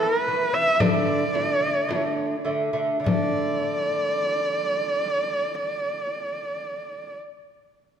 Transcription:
Already playing: lute E3 B3
0.03 horsehead fiddle A#4
0.21 horsehead fiddle B4
0.28 lute E3 B3, frame drum
0.53 lute E3 B3, horsehead fiddle E5
0.79 lute D3 A3, horsehead fiddle D5, frame drum
1.33 lute D3 A3, frame drum
1.60 lute D3 A3
1.88 lute D3 A3, frame drum
2.45 lute D3 A3, frame drum
2.73 lute D3 A3
3.00 lute D3, horsehead fiddle D5
3.04 lute A3, frame drum

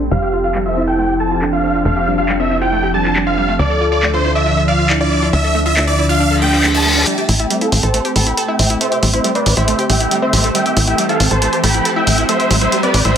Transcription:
Already playing: analog synth pad C4
0.11 analog synth bass F1, analog synth pad F3 G4 A4, synth pluck G3, soft synth lead G4, supersaw synth F5
0.22 synth pluck G4
0.33 synth pluck F4
0.44 synth pluck F4, supersaw synth F5
0.55 synth pluck G3, clap
0.66 synth pluck F4, supersaw synth E5
0.77 synth pluck C4, soft synth lead E4
0.87 synth pluck A4, supersaw synth G5
0.98 synth pluck A3
1.09 synth pluck G4
1.20 synth pluck A4, supersaw synth A5
1.31 synth pluck F4
1.42 soft synth lead D4, synth pluck A4, clap
1.53 synth pluck F4, supersaw synth F5
1.64 synth pluck C4
1.74 synth pluck F4
1.85 analog synth bass F1, synth pluck A3, supersaw synth F5
1.96 synth pluck G4
2.07 synth pluck G3, soft synth lead D4
2.18 synth pluck F4, supersaw synth F5
2.29 synth pluck G3, clap
2.40 synth pluck C4, supersaw synth E5
2.51 synth pluck C4, soft synth lead E4
2.61 synth pluck F4, supersaw synth G5
2.72 synth pluck A3
2.83 synth pluck G4
2.94 synth pluck G3, soft synth lead D4, supersaw synth A5
3.05 synth pluck F4, clap
3.16 synth pluck G3, clap
3.27 synth pluck C4, supersaw synth F5
3.37 synth pluck G3
3.48 synth pluck A3
3.59 analog synth bass D2, analog synth pad D3 F3 D4 E5, synth pluck A3, soft synth lead A4, supersaw synth D5
3.70 synth pluck A4
3.81 synth pluck F4
3.92 synth pluck F4, supersaw synth D5
4.03 synth pluck A3, clap
4.14 synth pluck F4, supersaw synth C5
4.24 synth pluck E4, soft synth lead F4
4.35 synth pluck D5, supersaw synth E5
4.46 synth pluck D4
4.57 synth pluck A4
4.68 synth pluck D5, supersaw synth F5
4.79 synth pluck F4
4.90 soft synth lead E4, synth pluck D5, clap
5.01 synth pluck F4, supersaw synth D5
5.11 synth pluck E4
5.22 synth pluck F4
5.33 analog synth bass D2, synth pluck D4, supersaw synth E5
5.44 synth pluck A4
5.55 synth pluck A3, soft synth lead D4
5.66 synth pluck F4, supersaw synth E5
5.77 synth pluck A3, clap
5.87 synth pluck E4, supersaw synth D5
5.98 soft synth lead D4, synth pluck E4
6.09 synth pluck F4, supersaw synth F5
6.20 synth pluck D4, reverse cymbal
6.31 synth pluck A4
6.42 synth pluck A3, soft synth lead D4, supersaw synth G5
6.53 synth pluck F4, clap
6.64 synth pluck A3, clap
6.74 synth pluck E4, supersaw synth A5
6.85 synth pluck A3
6.96 synth pluck D4
7.07 synth pluck G3, analog synth pad A3 C4 G4, supersaw synth E5 G5, closed hi-hat, riser
7.18 synth pluck G4, closed hi-hat
7.29 analog synth bass A1, synth pluck E4, open hi-hat
7.40 synth pluck E4, supersaw synth E5 G5, closed hi-hat
7.50 synth pluck G3, closed hi-hat
7.61 synth pluck E4, supersaw synth A4 F5, closed hi-hat
7.72 analog synth bass A1, synth pluck C4, open hi-hat
7.83 analog synth bass A1, synth pluck A4, supersaw synth C5 A5, closed hi-hat
7.94 synth pluck A3, closed hi-hat
8.05 synth pluck G4, closed hi-hat
8.16 analog synth bass A1, synth pluck A4, supersaw synth G5 B5, open hi-hat
8.27 synth pluck E4, closed hi-hat
8.37 synth pluck A4, closed hi-hat
8.48 synth pluck E4, supersaw synth E5 G5
8.59 analog synth bass A1, synth pluck C4, open hi-hat
8.70 synth pluck E4, closed hi-hat
8.81 synth pluck A3, supersaw synth C5 E5, closed hi-hat
8.92 synth pluck G4, closed hi-hat
9.03 analog synth bass A1, synth pluck G3, open hi-hat
9.13 synth pluck E4, supersaw synth C5 E5, closed hi-hat
9.24 synth pluck G3, closed hi-hat
9.35 synth pluck C4, supersaw synth B4 D5, closed hi-hat
9.46 analog synth bass A1, synth pluck C4, open hi-hat
9.57 analog synth bass A1, synth pluck E4, supersaw synth C5 E5, closed hi-hat
9.68 synth pluck A3, closed hi-hat
9.79 synth pluck G4, closed hi-hat
9.90 analog synth bass A1, synth pluck G3, supersaw synth E5 G5, open hi-hat
10.00 synth pluck E4, closed hi-hat
10.11 synth pluck G3, closed hi-hat
10.22 synth pluck C4, supersaw synth C5 E5
10.33 analog synth bass A1, synth pluck G3, open hi-hat
10.44 synth pluck A3, closed hi-hat
10.55 synth pluck G3, supersaw synth E5 G5, closed hi-hat
10.66 synth pluck G4, closed hi-hat
10.77 analog synth bass A1, synth pluck E4, open hi-hat
10.87 synth pluck E4, supersaw synth E5 G5, closed hi-hat
10.98 synth pluck G3, closed hi-hat
11.09 synth pluck E4, supersaw synth A4 F5, closed hi-hat
11.20 analog synth bass A1, synth pluck C4, open hi-hat
11.31 analog synth bass A1, synth pluck A4, supersaw synth C5 A5, closed hi-hat
11.42 synth pluck A3, closed hi-hat
11.53 synth pluck G4, closed hi-hat
11.64 analog synth bass A1, synth pluck A4, supersaw synth G5 B5, open hi-hat
11.74 synth pluck E4, closed hi-hat
11.85 synth pluck A4, closed hi-hat
11.96 synth pluck E4, supersaw synth E5 G5
12.07 analog synth bass A1, synth pluck C4, open hi-hat
12.18 synth pluck E4, closed hi-hat
12.29 synth pluck A3, supersaw synth C5 E5, closed hi-hat
12.40 synth pluck G4, closed hi-hat
12.51 analog synth bass A1, synth pluck G3, open hi-hat
12.61 synth pluck E4, supersaw synth C5 E5, closed hi-hat
12.72 synth pluck G3, closed hi-hat
12.83 synth pluck C4, supersaw synth B4 D5, closed hi-hat
12.94 analog synth bass A1, synth pluck C4, open hi-hat
13.05 analog synth bass A1, synth pluck E4, supersaw synth C5 E5, closed hi-hat

